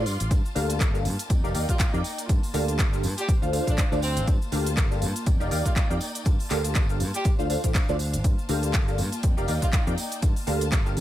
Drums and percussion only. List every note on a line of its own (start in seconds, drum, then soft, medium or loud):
0.06 open hi-hat loud
0.06 tambourine medium
0.20 closed hi-hat medium
0.20 tambourine soft
0.20 cabasa medium
0.31 kick loud
0.31 closed hi-hat medium
0.31 tambourine medium
0.31 cabasa medium
0.45 tambourine soft
0.45 cabasa soft
0.56 open hi-hat loud
0.56 tambourine medium
0.70 closed hi-hat medium
0.70 tambourine soft
0.70 cabasa medium
0.80 kick loud
0.80 clap loud
0.80 closed hi-hat medium
0.80 tambourine soft
0.80 cabasa medium
0.95 tambourine soft
0.95 cabasa soft
1.05 open hi-hat loud
1.05 tambourine medium
1.19 closed hi-hat medium
1.19 tambourine soft
1.19 cabasa medium
1.30 kick loud
1.30 closed hi-hat medium
1.30 tambourine medium
1.30 cabasa medium
1.44 tambourine soft
1.44 cabasa soft
1.55 open hi-hat loud
1.55 tambourine medium
1.69 kick medium
1.69 closed hi-hat medium
1.69 cabasa medium
1.80 kick loud
1.80 clap loud
1.80 closed hi-hat medium
1.80 tambourine medium
1.80 cabasa medium
1.94 cabasa soft
2.04 open hi-hat loud
2.04 tambourine loud
2.18 closed hi-hat medium
2.18 tambourine soft
2.18 cabasa medium
2.29 kick loud
2.29 closed hi-hat medium
2.29 tambourine medium
2.29 cabasa medium
2.43 open hi-hat medium
2.43 tambourine soft
2.43 cabasa soft
2.54 open hi-hat loud
2.54 tambourine loud
2.68 closed hi-hat medium
2.68 tambourine soft
2.68 cabasa medium
2.79 kick loud
2.79 clap loud
2.79 closed hi-hat medium
2.79 tambourine medium
2.79 cabasa medium
2.93 tambourine soft
2.93 cabasa soft
3.03 open hi-hat loud
3.03 tambourine loud
3.17 closed hi-hat medium
3.17 tambourine soft
3.17 cabasa medium
3.28 kick loud
3.28 closed hi-hat medium
3.28 tambourine medium
3.28 cabasa medium
3.42 tambourine soft
3.42 cabasa soft
3.53 open hi-hat loud
3.53 tambourine loud
3.67 kick medium
3.67 closed hi-hat medium
3.67 tambourine soft
3.67 cabasa medium
3.77 kick loud
3.77 clap loud
3.77 closed hi-hat medium
3.77 tambourine medium
3.77 cabasa medium
3.92 tambourine soft
3.92 cabasa soft
4.02 open hi-hat loud
4.02 tambourine loud
4.16 closed hi-hat medium
4.16 tambourine soft
4.16 cabasa medium
4.27 kick loud
4.27 closed hi-hat medium
4.27 tambourine medium
4.27 cabasa medium
4.42 tambourine soft
4.42 cabasa soft
4.52 open hi-hat loud
4.52 tambourine loud
4.66 closed hi-hat soft
4.66 tambourine soft
4.66 cabasa medium
4.77 kick loud
4.77 clap loud
4.77 closed hi-hat medium
4.77 tambourine medium
4.77 cabasa medium
4.92 tambourine soft
4.92 cabasa soft
5.02 open hi-hat loud
5.02 tambourine medium
5.16 closed hi-hat medium
5.16 tambourine soft
5.16 cabasa medium
5.26 kick loud
5.26 closed hi-hat medium
5.26 tambourine medium
5.26 cabasa medium
5.40 tambourine soft
5.40 cabasa soft
5.51 open hi-hat loud
5.51 tambourine medium
5.65 kick medium
5.65 closed hi-hat medium
5.65 tambourine soft
5.65 cabasa medium
5.76 kick loud
5.76 clap loud
5.76 closed hi-hat medium
5.76 tambourine medium
5.76 cabasa medium
5.91 cabasa soft
6.01 open hi-hat loud
6.01 tambourine loud
6.15 closed hi-hat medium
6.15 tambourine soft
6.15 cabasa medium
6.25 kick loud
6.25 closed hi-hat medium
6.25 tambourine medium
6.25 cabasa medium
6.39 open hi-hat medium
6.39 tambourine soft
6.39 cabasa soft
6.50 clap medium
6.50 open hi-hat loud
6.50 tambourine loud
6.64 closed hi-hat soft
6.64 tambourine soft
6.64 cabasa medium
6.75 kick loud
6.75 clap loud
6.75 closed hi-hat medium
6.75 tambourine medium
6.75 cabasa medium
6.89 tambourine soft
6.89 cabasa soft
7.00 open hi-hat loud
7.00 tambourine loud
7.13 closed hi-hat medium
7.13 tambourine soft
7.13 cabasa medium
7.24 kick loud
7.24 closed hi-hat medium
7.24 tambourine medium
7.24 cabasa medium
7.39 tambourine soft
7.39 cabasa soft
7.50 open hi-hat loud
7.50 tambourine medium
7.63 kick medium
7.63 closed hi-hat medium
7.63 tambourine soft
7.63 cabasa medium
7.75 kick loud
7.75 clap loud
7.75 closed hi-hat medium
7.75 tambourine medium
7.75 cabasa medium
7.88 tambourine soft
7.88 cabasa soft
7.99 open hi-hat loud
7.99 tambourine loud
8.13 closed hi-hat soft
8.13 tambourine soft
8.13 cabasa medium
8.24 kick loud
8.24 closed hi-hat medium
8.24 tambourine medium
8.24 cabasa medium
8.38 tambourine soft
8.38 cabasa soft
8.49 open hi-hat loud
8.49 tambourine loud
8.63 closed hi-hat soft
8.63 tambourine soft
8.63 cabasa medium
8.74 kick loud
8.74 clap loud
8.74 closed hi-hat medium
8.74 tambourine medium
8.74 cabasa medium
8.88 tambourine soft
8.88 cabasa soft
8.98 open hi-hat loud
8.98 tambourine medium
9.12 closed hi-hat medium
9.12 tambourine soft
9.12 cabasa medium
9.23 kick loud
9.23 closed hi-hat medium
9.23 tambourine soft
9.23 cabasa medium
9.38 tambourine soft
9.38 cabasa soft
9.48 open hi-hat loud
9.48 tambourine loud
9.62 kick medium
9.62 closed hi-hat medium
9.62 cabasa medium
9.73 kick loud
9.73 clap loud
9.73 closed hi-hat medium
9.73 tambourine soft
9.73 cabasa medium
9.87 cabasa soft
9.98 open hi-hat loud
9.98 tambourine loud
10.12 closed hi-hat soft
10.12 tambourine soft
10.12 cabasa medium
10.22 kick loud
10.22 closed hi-hat medium
10.22 tambourine medium
10.22 cabasa medium
10.36 open hi-hat medium
10.36 tambourine soft
10.36 cabasa soft
10.47 open hi-hat loud
10.47 tambourine medium
10.61 closed hi-hat medium
10.61 tambourine soft
10.61 cabasa medium
10.72 kick loud
10.72 clap loud
10.72 closed hi-hat medium
10.72 tambourine medium
10.72 cabasa medium
10.86 tambourine soft
10.86 cabasa soft
10.97 open hi-hat loud
10.97 tambourine medium